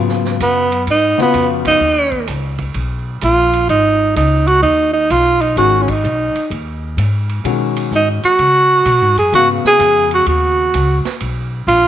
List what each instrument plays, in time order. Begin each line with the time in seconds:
Already playing: upright bass G#2, grand piano C#3 F#3 B3 F4
0.09 snare
0.25 snare
0.40 upright bass F#2, tenor saxophone B3, hi-hat pedal, ride
0.72 ride
0.87 upright bass G#2, tenor saxophone D#4, ride
1.18 grand piano C#3 B3 F4 F#4, muted upright bass stroke, snare
1.22 tenor saxophone B3
1.34 upright bass F2, hi-hat pedal, ride
1.65 tenor saxophone D#4, kick, ride
1.80 upright bass D#2
2.12 kick
2.27 upright bass C#2, hi-hat pedal, ride
2.58 kick, ride
2.74 upright bass B1, ride
3.21 upright bass A#1, tenor saxophone F4, hi-hat pedal, ride
3.53 ride
3.69 upright bass G#1, tenor saxophone D#4, ride
4.16 upright bass C#2, tenor saxophone D#4, hi-hat pedal, ride
4.47 tenor saxophone F#4, ride
4.62 upright bass D#2, tenor saxophone D#4, ride
4.93 tenor saxophone D#4
5.10 upright bass B1, tenor saxophone F4, hi-hat pedal, ride
5.41 tenor saxophone D#4, ride
5.56 upright bass G#1, grand piano D#3 G#3 C#4 F#4, tenor saxophone F#4, ride
5.82 tenor saxophone C#4
5.88 tenor saxophone D#4, kick, ride
6.04 upright bass B1, hi-hat pedal
6.35 muted upright bass stroke, ride
6.50 upright bass D#2, ride
6.97 upright bass G#2, hi-hat pedal, ride
7.29 ride
7.44 upright bass B2, grand piano D#3 G#3 C#4 F#4, ride
7.76 ride
7.91 upright bass G#2, hi-hat pedal
7.96 tenor saxophone D#4
8.23 tenor saxophone F#4, muted upright bass stroke, ride
8.39 upright bass C#3, ride
8.85 upright bass B2, hi-hat pedal, ride
9.01 upright bass G#2
9.17 upright bass F#2, tenor saxophone G#4, ride
9.32 upright bass G#2, grand piano C#3 B3 F#4 F5, tenor saxophone F#4, ride
9.64 tenor saxophone G#4, muted upright bass stroke, snare
9.79 upright bass F2, hi-hat pedal, ride
10.11 tenor saxophone F#4, ride
10.26 upright bass D#2, tenor saxophone F#4, ride
10.74 upright bass C#2, hi-hat pedal, ride
11.05 muted upright bass stroke, snare, ride
11.20 upright bass B1, ride
11.67 upright bass A#1, tenor saxophone F4, hi-hat pedal, ride